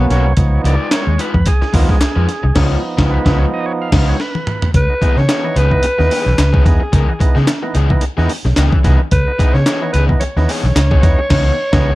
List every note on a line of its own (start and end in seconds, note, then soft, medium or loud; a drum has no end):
0.00 0.33 F#3 medium
0.00 0.33 A#3 soft
0.00 0.34 B3 medium
0.00 0.34 C#4 medium
0.10 0.25 B1 loud
0.10 0.23 B3 medium
0.10 0.24 C#4 medium
0.10 0.24 F#4 medium
0.10 0.24 A#4 medium
0.10 0.62 C#5 loud
0.10 snare soft
0.10 closed hi-hat medium
0.25 0.34 C2 loud
0.25 muted overdriven electric guitar stroke soft
0.37 0.58 C#2 loud
0.37 0.75 F3 medium
0.37 0.75 B3 soft
0.37 0.76 D#4 medium
0.37 kick loud
0.37 closed hi-hat medium
0.64 0.76 C#2 loud
0.64 0.86 G#3 medium
0.64 0.86 D#4 loud
0.64 0.86 F4 loud
0.64 0.86 B4 loud
0.64 0.94 D5 loud
0.64 closed hi-hat medium
0.91 1.13 G#3 medium
0.91 1.06 D#4 medium
0.91 1.06 F4 medium
0.91 1.06 B4 medium
0.91 1.21 C#5 loud
0.91 snare loud
0.91 clap loud
0.91 closed hi-hat medium
1.07 1.16 D#2 loud
1.07 muted overdriven electric guitar stroke medium
1.19 1.32 G#3 medium
1.19 1.32 D#4 medium
1.19 1.32 F4 medium
1.19 1.33 B4 medium
1.19 1.48 B4 medium
1.19 closed hi-hat medium
1.34 1.43 F2 loud
1.34 muted overdriven electric guitar stroke soft
1.34 kick medium
1.46 1.75 G#4 loud
1.46 muted overdriven electric guitar stroke soft
1.46 kick medium
1.46 clap medium
1.46 closed hi-hat medium
1.62 muted overdriven electric guitar stroke soft
1.62 muted fingered electric bass stroke soft
1.62 snare soft
1.73 1.85 D#2 loud
1.73 1.99 F3 medium
1.73 1.94 G#3 medium
1.73 1.99 B3 medium
1.73 1.88 D#4 loud
1.73 1.99 D#4 medium
1.73 1.88 F4 loud
1.73 1.90 F4 medium
1.73 1.88 B4 loud
1.73 kick medium
1.73 open hi-hat medium
1.89 2.68 G#4 medium
1.89 muted overdriven electric guitar stroke medium
1.89 kick medium
1.89 snare soft
2.01 muted overdriven electric guitar stroke soft
2.01 muted fingered electric bass stroke soft
2.01 snare medium
2.01 clap loud
2.01 closed hi-hat loud
2.16 2.25 F2 medium
2.16 2.26 G#3 medium
2.16 2.27 D#4 medium
2.16 2.27 F4 medium
2.16 2.27 B4 loud
2.28 muted overdriven electric guitar stroke soft
2.28 snare soft
2.28 closed hi-hat medium
2.43 2.53 C2 loud
2.43 muted overdriven electric guitar stroke soft
2.55 2.75 C#2 loud
2.55 3.91 F3 medium
2.55 2.75 G#3 medium
2.55 3.91 B3 soft
2.55 2.75 D#4 loud
2.55 3.91 D#4 medium
2.55 2.75 F4 loud
2.55 2.75 C#5 loud
2.55 kick loud
2.55 snare loud
2.55 crash medium
2.98 3.16 C#2 loud
2.98 3.17 G#3 loud
2.98 3.17 D#4 loud
2.98 3.16 F4 loud
2.98 3.16 B4 loud
2.98 kick loud
2.98 snare loud
3.11 3.39 B4 loud
3.25 3.44 C#2 loud
3.25 3.44 G#3 loud
3.25 3.44 D#4 loud
3.25 3.44 F4 medium
3.25 3.44 B4 medium
3.25 kick loud
3.25 snare loud
3.39 3.45 C#5 medium
3.54 3.66 D#5 loud
3.66 3.73 C#5 loud
3.82 4.09 F5 loud
3.92 4.12 C#2 loud
3.92 4.17 F3 medium
3.92 4.12 G#3 loud
3.92 4.17 B3 soft
3.92 4.17 D#4 medium
3.92 4.12 D#4 loud
3.92 4.12 F4 loud
3.92 4.12 B4 loud
3.92 kick loud
3.92 snare loud
3.92 crash medium
4.08 4.21 C#5 medium
4.20 4.71 B4 medium
4.20 snare medium
4.35 high tom medium
4.47 mid tom loud
4.62 floor tom loud
4.74 4.86 C#2 loud
4.74 4.92 C#3 medium
4.74 5.19 B4 loud
4.74 kick loud
4.74 closed hi-hat loud
4.89 4.95 B3 soft
4.89 4.95 D#4 soft
5.01 5.19 E3 medium
5.01 5.18 E3 loud
5.01 5.19 B3 medium
5.01 5.18 B3 medium
5.01 5.19 D#4 medium
5.01 5.18 D#4 loud
5.01 5.18 G#4 loud
5.01 muted fingered electric bass stroke soft
5.01 kick medium
5.01 closed hi-hat medium
5.17 5.26 C#3 medium
5.17 5.59 C#5 loud
5.17 snare soft
5.29 5.45 E3 medium
5.29 5.44 B3 medium
5.29 5.43 D#4 loud
5.29 5.43 G#4 medium
5.29 snare loud
5.29 clap loud
5.29 closed hi-hat medium
5.44 5.59 E3 medium
5.44 5.59 B3 medium
5.44 5.59 D#4 medium
5.44 muted overdriven electric guitar stroke soft
5.56 5.77 C#2 medium
5.56 5.74 C#3 medium
5.56 5.69 E3 medium
5.56 5.69 B3 medium
5.56 5.70 D#4 medium
5.56 5.70 G#4 medium
5.56 6.65 B4 loud
5.56 closed hi-hat medium
5.71 5.86 E3 medium
5.71 5.86 B3 medium
5.71 5.86 D#4 medium
5.71 muted overdriven electric guitar stroke soft
5.71 kick medium
5.83 muted overdriven electric guitar stroke soft
5.83 muted fingered electric bass stroke soft
5.83 closed hi-hat loud
5.98 6.08 D#2 medium
5.98 6.13 E3 medium
5.98 6.13 B3 medium
5.98 6.14 D#4 medium
5.98 muted overdriven electric guitar stroke medium
5.98 snare soft
6.10 6.32 E3 medium
6.10 6.25 B3 loud
6.10 6.25 D#4 loud
6.10 6.25 G#4 loud
6.10 open hi-hat medium
6.26 6.35 B1 medium
6.26 6.41 C#3 medium
6.26 muted overdriven electric guitar stroke soft
6.26 snare soft
6.38 6.59 C#2 medium
6.38 6.44 B3 soft
6.38 6.44 D#4 soft
6.38 muted overdriven electric guitar stroke soft
6.38 snare medium
6.38 clap loud
6.38 closed hi-hat medium
6.53 6.68 C#3 medium
6.53 6.64 E3 medium
6.53 6.64 B3 medium
6.53 6.64 D#4 medium
6.53 6.65 G#4 medium
6.53 kick loud
6.65 6.77 E2 loud
6.65 6.83 E3 medium
6.65 6.83 B3 medium
6.65 6.83 D#4 medium
6.65 7.44 G#4 medium
6.65 muted overdriven electric guitar stroke soft
6.65 kick medium
6.65 snare soft
6.65 closed hi-hat medium
6.80 muted overdriven electric guitar stroke soft
6.92 7.04 C#2 loud
6.92 7.10 C#3 medium
6.92 7.09 E3 medium
6.92 7.07 B3 medium
6.92 7.07 D#4 medium
6.92 7.07 A#4 loud
6.92 kick loud
6.92 closed hi-hat medium
7.08 7.14 B3 soft
7.08 7.13 D#4 soft
7.08 muted overdriven electric guitar stroke soft
7.20 7.38 E3 medium
7.20 7.38 B3 medium
7.20 7.38 D#4 medium
7.20 muted overdriven electric guitar stroke soft
7.20 muted fingered electric bass stroke soft
7.20 kick loud
7.20 closed hi-hat medium
7.35 7.45 C#3 medium
7.35 7.46 E3 medium
7.35 7.46 B3 medium
7.35 7.46 D#4 medium
7.35 7.46 G#4 medium
7.35 snare soft
7.47 snare loud
7.47 clap loud
7.47 closed hi-hat medium
7.62 7.77 E3 medium
7.62 7.78 B3 medium
7.62 7.78 D#4 medium
7.62 muted overdriven electric guitar stroke soft
7.75 7.96 C#2 loud
7.75 7.92 C#3 medium
7.75 7.91 E3 medium
7.75 7.89 B3 medium
7.75 7.89 D#4 loud
7.75 7.89 G#4 loud
7.75 closed hi-hat medium
7.90 8.05 E3 medium
7.90 8.05 B3 medium
7.90 8.05 D#4 medium
7.90 muted overdriven electric guitar stroke medium
7.90 kick medium
8.01 muted overdriven electric guitar stroke soft
8.01 closed hi-hat loud
8.17 8.27 E2 medium
8.17 8.32 E3 medium
8.17 8.28 E3 medium
8.17 8.33 B3 medium
8.17 8.29 B3 medium
8.17 8.29 D#4 medium
8.17 8.33 D#4 medium
8.17 8.29 G#4 medium
8.17 snare soft
8.29 muted overdriven electric guitar stroke soft
8.29 open hi-hat medium
8.45 8.54 B1 medium
8.45 8.60 C#3 medium
8.45 muted overdriven electric guitar stroke medium
8.45 snare soft
8.56 8.69 C#2 medium
8.56 8.78 E3 medium
8.56 8.71 B3 medium
8.56 8.64 B3 soft
8.56 8.71 D#4 medium
8.56 8.64 D#4 soft
8.56 8.71 G#4 medium
8.56 snare medium
8.56 clap loud
8.56 closed hi-hat medium
8.72 8.87 C#3 medium
8.72 muted overdriven electric guitar stroke medium
8.72 kick loud
8.84 8.96 C2 medium
8.84 8.97 E3 medium
8.84 9.02 E3 medium
8.84 8.97 B3 medium
8.84 9.02 B3 medium
8.84 8.98 D#4 medium
8.84 9.02 D#4 medium
8.84 8.98 G#4 medium
8.84 kick medium
8.84 snare soft
8.84 closed hi-hat medium
8.99 muted overdriven electric guitar stroke soft
9.11 9.23 C#2 loud
9.11 9.29 C#3 medium
9.11 9.55 B4 loud
9.11 kick loud
9.11 closed hi-hat medium
9.27 9.32 B3 soft
9.27 9.32 D#4 soft
9.39 9.55 E3 medium
9.39 9.57 E3 medium
9.39 9.56 B3 medium
9.39 9.57 B3 medium
9.39 9.56 D#4 medium
9.39 9.57 D#4 medium
9.39 9.56 G#4 medium
9.39 muted fingered electric bass stroke medium
9.39 kick loud
9.39 closed hi-hat medium
9.54 9.63 C#3 medium
9.54 9.92 C#5 loud
9.54 snare soft
9.66 9.83 E3 medium
9.66 9.81 B3 medium
9.66 9.81 D#4 medium
9.66 9.81 G#4 loud
9.66 snare loud
9.66 clap loud
9.66 closed hi-hat medium
9.82 9.97 E3 medium
9.82 9.97 B3 medium
9.82 9.97 D#4 medium
9.82 muted overdriven electric guitar stroke soft
9.93 10.14 C#2 loud
9.93 10.11 C#3 medium
9.93 10.07 E3 medium
9.93 10.07 B3 medium
9.93 10.08 D#4 medium
9.93 10.08 G#4 medium
9.93 10.05 B4 loud
9.93 closed hi-hat medium
10.09 10.24 E3 medium
10.09 10.24 B3 medium
10.09 10.24 D#4 medium
10.09 muted overdriven electric guitar stroke soft
10.09 kick medium
10.20 11.95 C#5 loud
10.20 muted fingered electric bass stroke medium
10.20 muted overdriven electric guitar stroke medium
10.20 closed hi-hat loud
10.36 10.46 D#2 medium
10.36 10.51 E3 medium
10.36 10.51 B3 medium
10.36 10.52 D#4 medium
10.36 muted overdriven electric guitar stroke medium
10.36 snare soft
10.49 10.65 E3 medium
10.49 10.64 B3 medium
10.49 10.63 D#4 loud
10.49 10.63 G#4 medium
10.49 open hi-hat medium
10.63 10.73 B1 medium
10.63 10.78 C#3 medium
10.63 muted overdriven electric guitar stroke soft
10.63 snare soft
10.75 10.96 C#2 loud
10.75 10.82 B3 soft
10.75 10.82 D#4 soft
10.75 muted overdriven electric guitar stroke medium
10.75 snare medium
10.75 clap loud
10.75 closed hi-hat loud
10.91 11.05 C#3 medium
10.91 11.02 E3 medium
10.91 11.02 B3 medium
10.91 11.02 D#4 medium
10.91 11.03 G#4 medium
10.91 kick loud
11.02 11.15 E2 loud
11.02 11.20 E3 medium
11.02 11.20 B3 medium
11.02 11.20 D#4 medium
11.02 muted overdriven electric guitar stroke soft
11.02 kick medium
11.02 snare soft
11.02 closed hi-hat medium
11.19 muted overdriven electric guitar stroke soft
11.30 11.50 C#2 loud
11.30 11.49 E3 loud
11.30 11.50 B3 loud
11.30 11.50 D#4 loud
11.30 kick loud
11.30 snare loud
11.30 crash medium
11.72 11.91 C#2 loud
11.72 11.91 E3 loud
11.72 11.92 E3 loud
11.72 11.91 B3 loud
11.72 11.92 B3 loud
11.72 11.91 D#4 medium
11.72 11.92 D#4 loud
11.72 11.91 G#4 loud
11.72 kick loud
11.72 snare loud